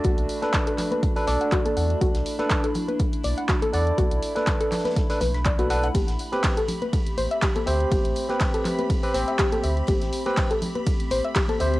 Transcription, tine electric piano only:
X:1
M:4/4
L:1/16
Q:"Swing 16ths" 1/4=122
K:Ador
V:1 name="Tine electric piano"
[DAd]3 [DAB]6 [DAB] [DAd]6- | [DAd]3 [DAB]2 z8 z [DAd]2- | [DAd]3 [DAB]6 [DAB] z3 [DAB] [DAB] z | z3 [CGB]2 z8 z [CGc]2- |
[CGc]3 [CGB]6 [CGB] [CGc]6- | [CGc]3 [CGB]2 z8 z [CGc]2 |]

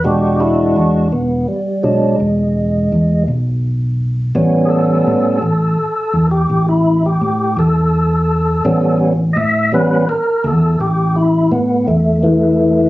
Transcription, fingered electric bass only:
X:1
M:12/8
L:1/8
Q:3/8=56
K:A
V:1 name="Fingered electric bass" clef=bass
E,,,2 E,, E,,, z B,,, E,,,2 E,, B,,,3 | A,,,2 A,, A,,, z E,, A,,,2 A,, E,,3 | A,,,2 A,, A,,, z E,, A,,,2 A,, E,,3 |]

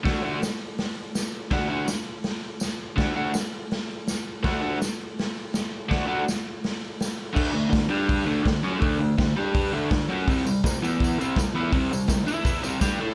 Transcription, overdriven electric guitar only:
X:1
M:4/4
L:1/8
Q:1/4=165
K:Dmix
V:1 name="Overdriven electric guitar"
[D,A,DF] [D,A,DF] z6 | [D,A,DF] [D,A,DF] z6 | [D,A,DF] [D,A,DF] z6 | [D,A,DF] [D,A,DF] z6 |
[D,A,DF] [D,A,DF] z6 | [D,A,D] [D,A,] [D,A,] [G,DG]2 [D,A,D] [D,A,] [F,^CF] | [D,A,D] [D,A,] [D,A,] [G,DG]2 [D,A,D] [D,A,] [F,^CF] | [C,G,C] [C,G,] [C,G,] [E,B,E]2 [C,G,C] [C,G,] [E,B,E] |
[C,G,C] [C,G,] [C,G,] [E,B,E]2 [C,G,C] [G,DG] [A,EA] |]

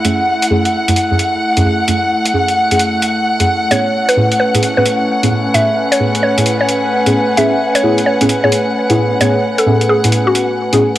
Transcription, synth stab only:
X:1
M:4/4
L:1/16
Q:"Swing 16ths" 1/4=131
K:A
V:1 name="Synth stab"
[F,,A,CEG] z3 [F,,A,CEG] z2 [F,,A,CEG] z [F,,A,CEG] z3 [F,,A,CEG] [F,,A,CEG] z | [F,,A,CEG] z3 [F,,A,CEG]3 [F,,A,CEG]6 [F,,A,CEG] z2 | [A,,B,CEG] z3 [A,,B,CEG] z2 [A,,B,CEG] z [A,,B,CEG] z3 [A,,B,CEG] [A,,E] z | [A,,B,CEG] z3 [A,,B,CEG]3 [A,,B,CEG]6 [A,,B,CEG] z2 |
[A,,B,CEG] z3 [A,,B,CEG] z2 [A,,B,CEG] z [A,,B,CEG] z3 [A,,B,CEG] [A,,B,CEG] z | [A,,B,CEG] z3 [A,,B,CEG]3 [A,,B,CEG]6 [A,,B,CEG] z2 |]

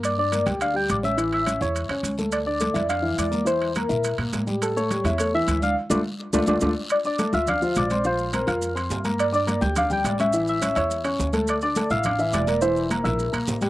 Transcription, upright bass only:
X:1
M:4/4
L:1/8
Q:1/4=210
K:Dm
V:1 name="Upright bass" clef=bass
G,,3 D,,3 A,,,2- | A,,,3 E,,2 E,, D,,2- | D,,3 F,,3 E,,2- | E,,3 B,,2 B,, A,,2- |
A,,3 E,,3 D,,2 | z D,, z2 D,, D,, D,, z | z3 D,,3 B,,,2- | B,,,3 F,,3 G,,2- |
G,,3 D,,3 A,,,2- | A,,,3 E,,3 D,,2- | D,,3 A,,,3 E,,,2- | E,,,3 B,,,2 B,,, A,,,2 |]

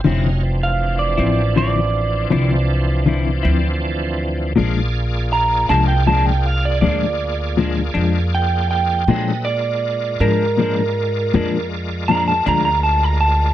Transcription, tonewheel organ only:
X:1
M:12/8
L:1/8
Q:3/8=53
K:Bblyd
V:1 name="Tonewheel organ"
[^F,^C_E=F] [=E,=F,=CD]8- [E,F,CD]3 | [B,F_Ad]12 | [^F,A=B_e] [_A,=F_Bd]8- [A,FBd]3 |]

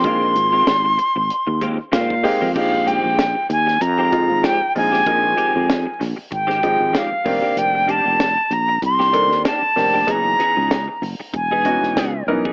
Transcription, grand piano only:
X:1
M:4/4
L:1/8
Q:"Swing 16ths" 1/4=96
K:Bbmix
V:1 name="Grand piano"
[A,B,CEF]3 z4 [A,B,CEG] | [F,A,CEG]3 z2 [F,A,CEF] z [F,A,CEF] | [F,A,CEB]3 z2 [F,A,CEG] z [E,B,CDG]- | [E,B,CDG]2 z3 [E,B,CD=A] z [E,B,CDG] |
[_F,_C_DEA]3 z2 [F,CDE_G] z [F,CDEB] |]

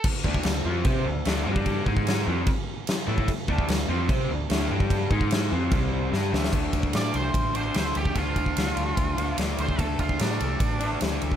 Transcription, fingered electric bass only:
X:1
M:4/4
L:1/8
Q:1/4=148
K:Dm
V:1 name="Fingered electric bass" clef=bass
z D,, D,, F,, C, D,, D,, G,,- | G,, ^G,,2 F,, z3 A,, | z D,, D,, F,, C, D,, D,, G,,- | G,, ^G,,2 F,, C,,2 =G,, D,, |
D,, D,, A,, C,, A,,,2 D,, D,, | D,, D,, D,, D,, D,, D,, D,, D,, | D,, D,, A,, C,, A,,,2 D,, D,, |]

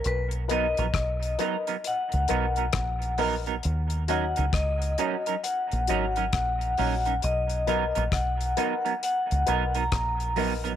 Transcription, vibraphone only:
X:1
M:4/4
L:1/16
Q:"Swing 16ths" 1/4=67
K:Cblyd
V:1 name="Vibraphone"
=B2 ^d6 ^f6 z2 | z2 g2 e4 g4 g4 | ^d4 ^f4 f3 ^a3 z2 |]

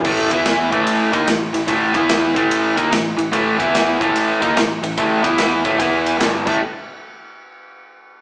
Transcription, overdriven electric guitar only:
X:1
M:4/4
L:1/8
Q:"Swing" 1/4=146
K:Ephr
V:1 name="Overdriven electric guitar" clef=bass
[A,,E,A,] [E,B,E]2 [A,,E,A,]2 [^D,_B,^D] [A,,E,] [A,,E,] | [A,,E,A,] [E,B,E]2 [A,,E,A,]2 [^D,_B,^D] [A,,E,] [A,,E,] | [A,,E,A,] [E,B,E]2 [A,,E,A,]2 [^D,_B,^D] [A,,E,] [A,,E,] | [A,,E,A,] [E,B,E]2 [A,,E,A,] [E,B,E]2 [G,,D,G,] [A,,E,A,] |
z8 |]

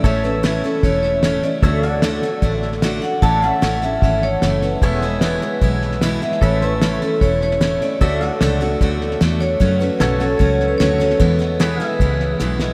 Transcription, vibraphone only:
X:1
M:4/4
L:1/16
Q:1/4=150
K:A
V:1 name="Vibraphone"
c2 B4 A2 c2 c4 d2- | d6 z8 f2 | a2 f4 e2 e2 c4 B2- | B2 B8 z4 e2 |
c2 B4 A2 c2 c4 d2- | d6 z8 c2- | c2 B2 B2 A2 c3 B c2 c2 | B12 z4 |]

